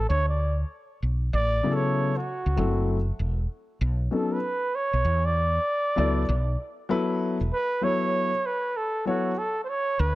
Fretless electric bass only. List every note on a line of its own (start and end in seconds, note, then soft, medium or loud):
0.10 0.63 D2 loud
1.02 1.29 B1 medium
1.33 1.60 A1 loud
2.46 2.56 C#2 medium
2.57 3.10 F#1 loud
3.19 3.46 E1 medium
3.81 4.07 B1 loud
4.93 5.03 B1 medium
5.05 5.58 E2 loud
5.98 6.24 C#2 medium
6.29 6.55 B1 loud
7.41 7.50 E1 medium
9.99 10.15 D2 loud